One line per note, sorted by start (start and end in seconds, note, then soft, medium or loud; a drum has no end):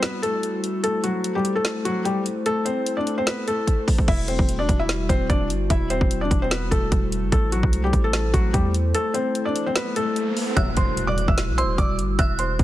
0.00 0.80 G3 medium
0.00 0.20 B3 medium
0.00 7.28 E4 medium
0.00 0.80 F#4 medium
0.00 0.19 B4 medium
0.00 snare loud
0.00 closed hi-hat medium
0.23 0.80 A3 medium
0.23 0.80 A4 medium
0.23 closed hi-hat medium
0.43 closed hi-hat medium
0.64 closed hi-hat medium
0.83 4.05 A3 medium
0.83 1.01 A3 medium
0.83 1.01 A4 medium
0.83 4.05 A4 medium
0.83 4.05 C5 medium
0.83 closed hi-hat medium
1.04 1.33 F#3 medium
1.04 1.33 F#4 medium
1.04 closed hi-hat medium
1.24 closed hi-hat medium
1.35 1.53 G3 medium
1.35 1.52 G4 medium
1.45 closed hi-hat medium
1.55 1.84 A3 medium
1.55 1.83 A4 medium
1.65 snare loud
1.65 closed hi-hat medium
1.85 2.03 F#3 medium
1.85 2.02 F#4 medium
1.85 closed hi-hat medium
2.05 2.22 G3 medium
2.05 2.22 G4 medium
2.05 closed hi-hat medium
2.26 closed hi-hat medium
2.46 2.63 A3 medium
2.46 2.63 A4 medium
2.46 closed hi-hat medium
2.65 2.95 C4 medium
2.65 2.95 C5 medium
2.65 closed hi-hat medium
2.86 closed hi-hat medium
2.97 3.14 D4 medium
2.97 3.14 D5 medium
3.07 closed hi-hat medium
3.18 3.26 C4 medium
3.18 3.26 C5 medium
3.27 3.44 B3 medium
3.27 3.44 B4 medium
3.27 snare loud
3.27 closed hi-hat medium
3.48 4.05 A3 medium
3.48 4.05 A4 medium
3.48 closed hi-hat medium
3.67 kick medium
3.67 closed hi-hat medium
3.88 kick loud
3.88 open hi-hat medium
3.98 kick medium
4.08 4.38 E1 loud
4.08 7.29 G3 medium
4.08 4.26 E4 medium
4.08 7.29 F#4 medium
4.08 4.25 E5 medium
4.08 kick loud
4.08 crash medium
4.28 4.58 C4 medium
4.28 4.57 C5 medium
4.28 closed hi-hat medium
4.39 4.68 E1 loud
4.39 kick loud
4.49 closed hi-hat medium
4.59 4.76 D4 medium
4.59 4.76 D5 medium
4.69 5.08 E1 loud
4.69 kick medium
4.69 closed hi-hat medium
4.79 5.08 E4 medium
4.79 5.07 E5 medium
4.89 snare loud
4.89 closed hi-hat medium
5.09 5.29 E1 loud
5.09 5.27 C4 medium
5.09 5.26 C5 medium
5.09 kick medium
5.09 closed hi-hat medium
5.30 5.51 E1 loud
5.30 5.47 D4 medium
5.30 5.47 D5 medium
5.30 kick loud
5.30 closed hi-hat medium
5.50 5.69 G1 loud
5.50 closed hi-hat medium
5.70 6.00 E1 loud
5.70 5.88 E4 medium
5.70 5.87 E5 medium
5.70 kick loud
5.70 closed hi-hat medium
5.90 6.20 C4 medium
5.90 6.19 C5 medium
5.90 closed hi-hat medium
6.01 6.30 E1 loud
6.01 kick loud
6.11 closed hi-hat medium
6.21 6.39 D4 medium
6.21 6.38 D5 medium
6.31 6.70 E1 loud
6.31 kick medium
6.31 closed hi-hat medium
6.42 6.50 C4 medium
6.42 6.50 C5 medium
6.51 6.69 B3 medium
6.51 6.68 B4 medium
6.51 snare loud
6.51 closed hi-hat medium
6.71 6.91 E1 loud
6.71 7.29 A3 medium
6.71 7.28 A4 medium
6.71 kick medium
6.71 closed hi-hat medium
6.92 7.24 E1 loud
6.92 kick loud
6.92 closed hi-hat medium
7.12 closed hi-hat medium
7.23 7.32 F#1 loud
7.32 7.62 A1 loud
7.32 10.53 A3 medium
7.32 7.50 A3 medium
7.32 10.53 E4 medium
7.32 7.49 A4 medium
7.32 10.53 A4 medium
7.32 10.53 C5 medium
7.32 kick loud
7.32 closed hi-hat medium
7.52 7.82 F#3 medium
7.52 7.82 F#4 medium
7.52 closed hi-hat medium
7.63 7.92 C2 loud
7.63 kick loud
7.73 closed hi-hat medium
7.84 8.01 G3 medium
7.84 8.01 G4 medium
7.93 8.32 A1 loud
7.93 kick medium
7.93 closed hi-hat medium
8.04 8.32 A3 medium
8.04 8.32 A4 medium
8.13 snare loud
8.13 closed hi-hat medium
8.34 8.53 A1 loud
8.34 8.51 F#3 medium
8.34 8.51 F#4 medium
8.34 kick medium
8.34 closed hi-hat medium
8.53 8.93 E2 loud
8.53 8.71 G3 medium
8.53 8.71 G4 medium
8.53 kick loud
8.53 closed hi-hat medium
8.74 closed hi-hat medium
8.94 9.12 A3 medium
8.94 9.12 A4 medium
8.94 closed hi-hat medium
8.94 riser medium
9.14 9.44 C4 medium
9.14 9.43 C5 medium
9.14 closed hi-hat medium
9.35 closed hi-hat medium
9.45 9.63 D4 medium
9.45 9.63 D5 medium
9.56 closed hi-hat medium
9.66 9.75 C4 medium
9.66 9.74 C5 medium
9.76 9.93 B3 medium
9.76 9.93 B4 medium
9.76 snare loud
9.76 closed hi-hat medium
9.96 10.54 A3 medium
9.96 10.53 A4 medium
9.96 closed hi-hat medium
10.16 closed hi-hat medium
10.37 open hi-hat medium
10.57 10.76 E1 loud
10.57 10.69 B1 loud
10.57 10.69 G2 medium
10.57 10.70 F#3 loud
10.57 12.64 G3 medium
10.57 12.64 E4 medium
10.57 12.64 F#4 medium
10.57 10.74 E5 medium
10.57 10.74 E6 medium
10.57 11.54 F#6 loud
10.57 kick loud
10.57 closed hi-hat medium
10.57 impact medium
10.77 11.26 E1 loud
10.77 11.06 C5 medium
10.77 11.06 C6 medium
10.77 kick loud
10.77 closed hi-hat medium
10.97 closed hi-hat medium
11.07 11.25 D5 medium
11.07 11.25 D6 medium
11.18 closed hi-hat medium
11.28 11.50 E1 loud
11.28 11.57 E5 medium
11.28 11.56 E6 medium
11.28 kick medium
11.38 snare loud
11.38 closed hi-hat medium
11.48 11.65 B1 medium
11.58 11.75 C5 medium
11.58 11.75 C6 medium
11.58 12.15 E6 medium
11.58 closed hi-hat medium
11.63 11.77 E1 loud
11.78 12.00 E1 loud
11.78 11.96 D5 medium
11.78 11.95 D6 medium
11.78 kick loud
11.78 closed hi-hat medium
11.98 12.18 G1 loud
11.98 closed hi-hat medium
12.19 12.58 E1 loud
12.19 12.36 E5 medium
12.19 12.36 E6 medium
12.19 12.64 F#6 loud
12.19 kick loud
12.19 closed hi-hat medium
12.39 12.64 C5 medium
12.39 12.64 C6 medium
12.39 closed hi-hat medium
12.59 12.64 E1 loud
12.59 kick loud
12.59 closed hi-hat soft